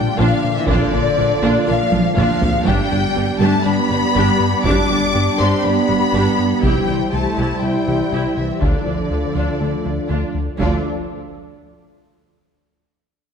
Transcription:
Already playing: D3 F3 G3 D4 F4 D5 G5
0.19 A#1 A#2 F3 A#3 D4 F4 F5
0.44 A#2
0.56 E3 E5
0.68 A#1 A#2 D3 A#3 D4 F4 D5, taiko
0.93 A#1 A#2 D4 F4
1.18 A#1 A#2 D4 F4
1.42 A#1 A#2 A#3 D4 F4
1.67 A#1 F3 A#3 D4 F4 F5
1.92 A#1 A#2 D4 F4, taiko high
2.17 A#1 A#2 F3 A#3 D4 F4 F5, taiko low-mid
2.42 A#2, taiko low
2.66 G1 G2 G3 D4 G4 D5 G5, taiko
2.91 G1 G2 B3 D4 G4
3.15 G1 G2 B3 D4 G4
3.40 G1 G2 G3 A3 D4 G4 A5
3.65 G1 G3 B3 D4 G4 B5
3.90 G1 G2 B3 D4 G4
4.15 G1 G2 G3 D4 G4
4.40 G2
4.65 G1 G2 G3 D4 G4 D6, taiko
4.90 G1 G2 B3 D4 G4
5.15 G1 G2 B3 D4 G4
5.39 G1 G2 G3 C4 D4 G4 C6
5.64 G1 G3 B3 D4 G4 B5
5.89 G1 G2 B3 D4 G4
6.14 G1 G2 G3 D4 G4
6.39 G2
6.62 C2 C3 G3 E4 G4 C5 G5, taiko
6.88 C2 E3 E4 G4
7.12 C2 E3 A3 E4 G4 A5
7.37 C2 C3 E4 G4
7.62 C2 C3 G3 E4 G4 G5
7.87 C2 E3 E4 G4
8.12 C2 C3 E4 G4
8.36 C2 E3 E5
8.61 D2 D3 F3 A3 D4 F4 A4 D5, taiko
8.86 D2 F3 D4 F4
9.11 D2 F3 D4 F4
9.35 D2 D3 D4 F4
9.61 D2 D3 A3 D4 F4
9.85 D2 F3 D4 F4
10.10 D2 D3 D4 F4
10.34 D2
10.59 D2 D3 F3 A3 D4 F4 A4 D5, taiko

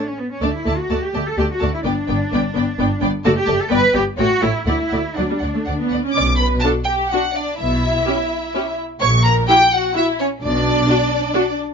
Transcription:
0.06 C#4
0.18 B3
0.30 C#4
0.41 D2 A3 D4 D5 A5
0.54 E4
0.65 D2 A3 D5 A5
0.78 F#4
0.90 D2 A3 D5 A5
1.02 G4
1.14 D2 A3 D5 A5
1.26 A4
1.38 D2 A3 G4 D5 A5
1.51 F#4
1.61 D2 A3 D5 A5
1.74 E4
1.84 G1 B3 D4 D5 G5
2.07 G1 B3 D5 G5
2.31 G1 B3 D5 G5
2.55 G1 B3 D5 G5
2.78 G1 B3 D5 G5
3.01 G1 B3 D5 G5
3.25 F#1 A3 F#4 D5 A5
3.36 G4
3.46 F#1 A3 D5 A5
3.60 A4
3.69 G1 B3 B4 D5 G5
3.92 G1 B3 G4 D5 G5
4.17 A1 A3 F#4 C#5 G5
4.41 A1 A3 E4 C#5 G5
4.66 D2 A3 E4 D5 F#5
4.89 D2 A3 D5 F#5
5.14 D2 F#3 D4 F#5
5.18 D5
5.29 G3
5.38 D2 D5 F#5
5.55 A3
5.65 D2 D5 F#5
5.80 B3
5.89 D2 D5 F#5
6.05 C#4
6.11 D6
6.16 B1 B2 D5
6.37 B4 B5
6.60 A5
6.64 D4 F#4 A4
6.84 G5
6.89 G4
7.08 F#5
7.13 D4 F#4
7.35 D4 D5
7.57 B1 B2 E4 E5
8.06 C#4 G4
8.54 C#4 G4
9.00 A#1 A#2 C#5 C#6
9.24 A#4 A#5
9.47 E4 F#4 G4 G5
9.73 F#4 F#5
9.95 E4 F#4 E5
10.19 C#4 C#5
10.42 B1 B2 D4 D5
10.88 D4 F#4
11.34 D4 F#4

